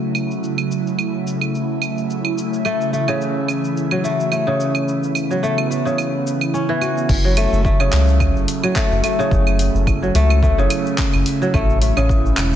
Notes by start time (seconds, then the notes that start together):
Already playing: C#3 F#3 A3 E4
0.15 claves, shaker
0.31 shaker
0.44 shaker
0.58 claves, shaker
0.71 shaker
0.87 shaker
0.99 claves, shaker
1.27 shaker
1.41 claves, shaker
1.55 shaker
1.82 claves, shaker
1.98 shaker
2.10 shaker
2.25 claves
2.38 shaker
2.53 shaker
2.65 E3 A3, claves, shaker
2.81 shaker
2.93 A3, shaker
3.08 C#3, claves, shaker
3.21 shaker
3.48 claves, shaker
3.64 shaker
3.77 shaker
3.91 F#3, claves
4.04 A3, shaker
4.20 shaker
4.32 A3, claves, shaker
4.47 C#3
4.60 shaker
4.75 claves, shaker
4.87 B3, shaker
5.03 shaker
5.15 claves, shaker
5.31 F#3, shaker
5.43 A3, shaker
5.58 claves
5.71 A3, shaker
5.85 C#3, shaker
5.98 claves, shaker
6.27 shaker
6.41 claves, shaker
6.54 C#4, shaker
6.69 E3
6.81 F#4, claves, shaker
6.98 shaker
7.09 F#1 C#3 F#3 A3 E4, kick, crash, shaker
7.24 F#3, shaker
7.37 A3, open hi-hat, claves, shaker
7.52 F#1, shaker
7.65 A3, kick, shaker
7.80 C#3, claves, shaker
7.93 C#2, clap, open hi-hat, shaker
8.09 shaker
8.20 kick, claves, shaker
8.35 F#1, shaker
8.48 open hi-hat, shaker
8.63 F#3, claves, shaker
8.76 A3, kick, clap, shaker
8.91 F#1, shaker
9.04 A3, open hi-hat, claves, shaker
9.19 C#3, shaker
9.31 F#1, kick, shaker
9.47 claves, shaker
9.59 open hi-hat, shaker
9.74 F#1, shaker
9.87 kick, claves, shaker
10.02 F#3, shaker
10.15 C#2 A3, open hi-hat, shaker
10.30 claves, shaker
10.43 A3, kick, shaker
10.58 F#1 C#3, shaker
10.70 open hi-hat, claves, shaker
10.86 shaker
10.98 kick, clap, shaker
11.13 F#1, claves, shaker
11.26 open hi-hat, shaker
11.42 F#3, shaker
11.53 A1 E3 A3, kick, claves, shaker
11.70 shaker
11.82 A3, open hi-hat, shaker
11.97 A1 C#3, claves, shaker
12.09 kick, shaker
12.26 shaker
12.37 E1, clap, open hi-hat, claves, shaker